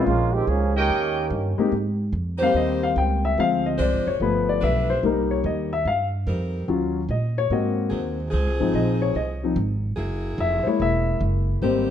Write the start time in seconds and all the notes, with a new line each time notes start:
0.06 A#1 G#3 A#3 C#4 F4
0.34 D#3 G#3 C4 G4
0.47 C#2 F3 A#3 C#4 G#4
0.76 D#3 A#3 C#4 G4 A#4 C#5 D#5 G5
0.89 D#2
1.30 G2
1.58 G#3 A#3 C4 D#4 G4, muted upright bass stroke
1.72 G#2
2.12 F2
2.38 G3 D#4 G4 C5
2.42 A#3 C4 F5
2.54 D#2 D#5
2.83 F5
2.96 C#2 G5
3.25 E5
3.38 D2 F3 G#3 C4 F5
3.66 D#5
3.78 C2 G#3 D4 F4 C5 D5
3.93 G#1
4.07 F1 C#5
4.20 G1 F3 A3 B3 B4
4.49 D5
4.61 B1 G3 D4 F4 B4 E5
4.90 C5
5.03 C2 G3 A#3 D#4 A#4
5.31 C#5
5.44 D#2 D#5
5.73 E5
5.85 G2 F5
6.27 F2 G3 C4 D#4 A#4
6.68 D#2 F#3 C#4 F4
7.09 A#2 D#5
7.38 C#5
7.50 G#2 A#3 C4 F#4 D#5
7.90 D#2 F#3 C4 D#4 G#4
8.31 C#2 F3 C4 G#4
8.47 C2
8.60 G#1 F3 C4 D#4
8.74 A#1 D#5
9.02 C#5
9.15 C2 D#5
9.43 F3 C4 D#4
9.56 G#1
9.96 F#1 F#3 A#3 E4 G#4
10.38 F1 E5
10.63 G#3 C5, muted upright bass stroke
10.67 A#3 E4 C#5
10.80 E1 E5
11.21 F#1
11.62 G#1 G3 A#3 C4 D#4 G4 C5